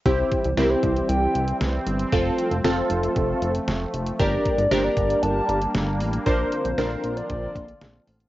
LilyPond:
<<
  \new Staff \with { instrumentName = "Soft synth lead" } { \time 4/4 \key c \mixolydian \tempo 4 = 116 c''4 bes'16 c''8. g''4 r4 | r1 | d''4 c''16 d''8. a''4 r4 | c''4 bes'8. d''16 d''4. r8 | }
  \new Staff \with { instrumentName = "Analog polysynth" } { \time 4/4 \key c \mixolydian <c' e' g'>4 <c' e' g'>4. r4. | <c' f' a'>4 <c' f' a'>4. r4. | <d' g' bes'>4 <d' g' bes'>4. r4. | <d' bes' c''>4 <d' bes' c''>4. r4. | }
  \new Staff \with { instrumentName = "Analog synth pad" } { \clef bass \time 4/4 \key c \mixolydian << { c'1~ | c'1 | d'1 | <d f f'>1 | } \\ { <e g>1 | <f a>1 | <g bes>1 | c'1 | } >> }
  \new Staff \with { instrumentName = "Analog synth bass" } { \clef bass \time 4/4 \key c \mixolydian c,8 r16 c,16 c,8 c,8 c,8 c,8 c,8 g,,8 | f,,8 r16 f,,16 f,,8 f,,8 f,,8 f,,8 f,,8 f,,8 | g,,8 r16 g,,16 g,,8 g,,8 g,,8 g,,8 g,,8 a,,8 | bes,,8 r16 bes,,16 bes,,8 bes,,8 bes,,8 bes,,8 bes,,8 a,,8 | }
  \new DrumStaff \with { instrumentName = "Drums" } \drummode { \time 4/4 <hh bd>8 <hh bd>16 hh16 <hh sn>8 <hh bd>16 hh16 hh8 hh16 hh16 <hh sn>8 hh16 hh16 | <hh bd>8 hh16 hh16 <hh sn>8 hh16 hh16 <hh bd>8 hh16 hh16 <hh sn>8 hh16 hh16 | <hh bd>8 <hh bd>16 hh16 <hh sn>8 <hh bd>16 hh16 hh8 hh16 hh16 <hh sn>8 hho16 hh16 | <hh bd>8 hh16 hh16 <hh sn>8 hh16 hh16 <hh bd>8 <hh bd>16 hh16 <hh sn>8 hho16 hh16 | }
>>